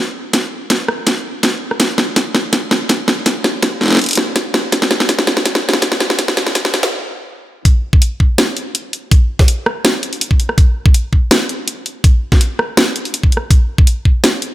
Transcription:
0.33 kick loud
0.33 snare medium
0.33 closed hi-hat medium
0.70 kick loud
0.70 snare medium
0.70 closed hi-hat medium
0.88 cross-stick medium
1.07 kick medium
1.07 snare medium
1.07 closed hi-hat medium
1.43 kick loud
1.43 snare medium
1.43 closed hi-hat medium
1.71 cross-stick soft
1.80 kick loud
1.80 snare medium
1.80 closed hi-hat medium
1.98 snare medium
2.16 kick loud
2.16 snare medium
2.16 closed hi-hat medium
2.35 snare medium
2.53 kick loud
2.53 snare medium
2.53 closed hi-hat medium
2.71 snare medium
2.89 kick loud
2.89 snare medium
2.89 closed hi-hat medium
3.08 snare medium
3.26 kick loud
3.26 snare medium
3.26 closed hi-hat medium
3.44 snare medium
3.62 kick loud
3.62 snare medium
3.62 closed hi-hat medium
3.81 snare soft
3.83 snare soft
3.86 snare soft
3.88 snare medium
3.90 snare medium
3.93 snare medium
3.95 snare medium
3.97 kick loud
3.97 snare medium
3.97 closed hi-hat soft
4.02 closed hi-hat soft
4.04 closed hi-hat soft
4.06 closed hi-hat soft
4.09 closed hi-hat medium
4.11 closed hi-hat medium
4.13 closed hi-hat medium
4.15 snare medium
4.15 closed hi-hat medium
4.36 kick loud
4.36 snare medium
4.36 closed hi-hat medium
4.54 snare medium
4.72 kick loud
4.72 snare medium
4.72 closed hi-hat medium
4.82 snare medium
4.91 snare medium
5.00 snare medium
5.09 kick loud
5.09 snare loud
5.09 closed hi-hat medium
5.19 snare medium
5.27 snare loud
5.37 snare medium
5.45 kick loud
5.45 snare loud
5.45 closed hi-hat medium
5.55 snare medium
5.69 snare loud
5.73 snare medium
5.82 kick loud
5.82 snare loud
5.82 closed hi-hat medium
5.92 snare medium
6.00 snare loud
6.10 snare medium
6.19 kick loud
6.19 snare loud
6.19 closed hi-hat medium
6.28 snare medium
6.37 snare loud
6.37 closed hi-hat soft
6.47 snare medium
6.55 kick loud
6.55 snare loud
6.55 closed hi-hat medium
6.65 snare loud
6.74 snare loud
6.74 closed hi-hat soft
6.83 snare medium
7.65 kick loud
7.65 open hi-hat medium
7.93 kick loud
8.02 closed hi-hat medium
8.20 kick medium
8.38 snare loud
8.38 closed hi-hat medium
8.57 closed hi-hat soft
8.75 closed hi-hat medium
8.93 closed hi-hat soft
9.11 kick loud
9.11 open hi-hat medium
9.39 kick loud
9.39 snare soft
9.48 closed hi-hat medium
9.66 cross-stick medium
9.85 snare loud
9.85 closed hi-hat medium
10.03 closed hi-hat soft
10.13 open hi-hat soft
10.21 closed hi-hat medium
10.31 kick medium
10.40 closed hi-hat soft
10.49 cross-stick medium
10.58 kick loud
10.58 open hi-hat medium
10.86 kick loud
10.94 closed hi-hat medium
11.13 kick medium
11.31 snare loud
11.31 closed hi-hat medium
11.49 closed hi-hat soft
11.68 closed hi-hat medium
11.86 closed hi-hat soft
12.04 kick loud
12.04 open hi-hat medium
12.32 kick loud
12.32 snare soft
12.41 closed hi-hat medium
12.59 cross-stick medium
12.77 snare loud
12.77 closed hi-hat medium
12.96 closed hi-hat soft
13.05 open hi-hat soft
13.14 closed hi-hat medium
13.23 kick medium
13.32 closed hi-hat soft
13.37 cross-stick soft
13.51 kick loud
13.51 open hi-hat medium
13.78 kick loud
13.87 closed hi-hat medium
14.05 kick medium
14.24 snare loud
14.24 closed hi-hat medium
14.42 closed hi-hat soft

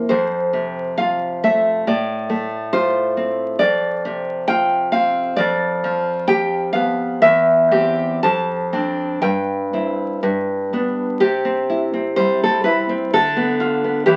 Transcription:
0.00 0.10 A#3 soft
0.00 0.10 E4 soft
0.09 1.83 F2 medium
0.09 0.95 C5 medium
0.53 1.87 C3 soft
0.98 1.87 F4 soft
0.98 1.41 F5 medium
1.44 1.88 A3 soft
1.44 1.86 E5 medium
1.87 3.57 A2 medium
1.87 2.70 D5 medium
2.30 3.60 A3 soft
2.73 3.61 F4 soft
2.73 3.57 C5 medium
3.17 3.61 C4 soft
3.59 5.33 F2 medium
3.59 4.44 D5 medium
4.05 5.37 C3 soft
4.48 5.38 F4 medium
4.48 4.90 G5 medium
4.92 5.37 C4 soft
4.92 5.35 F5 medium
5.36 7.18 F2 medium
5.36 6.24 D5 medium
5.84 7.22 F3 medium
6.28 7.22 G4 medium
6.28 6.72 G5 medium
6.73 7.21 B3 soft
6.73 7.19 F5 medium
7.22 8.21 E2 medium
7.22 8.20 E5 medium
7.71 8.19 C4 soft
7.71 8.20 G4 medium
8.23 9.21 F2 medium
8.23 9.20 A5 medium
8.73 9.19 C4 soft
8.73 9.20 D4 soft
9.22 10.20 G2 medium
9.22 10.69 G5 medium
9.73 10.19 C4 soft
9.73 10.20 E4 soft
10.23 11.20 G2 medium
10.73 11.19 B3 soft
10.73 11.19 D4 soft
11.20 13.09 C3 medium
11.20 12.14 G4 medium
11.45 11.92 C4 soft
11.70 12.64 E4 soft
11.93 12.42 C4 soft
12.16 13.13 G3 medium
12.16 12.41 C5 medium
12.43 12.88 C4 soft
12.43 12.63 A4 medium
12.64 13.13 E4 soft
12.64 13.11 B4 medium
12.89 13.13 C4 medium
13.13 14.04 D3 medium
13.13 14.03 A4 medium
13.36 13.83 B3 soft
13.60 14.07 F4 medium
13.84 14.05 B3 soft
14.06 14.16 E3 medium
14.06 14.16 G4 medium

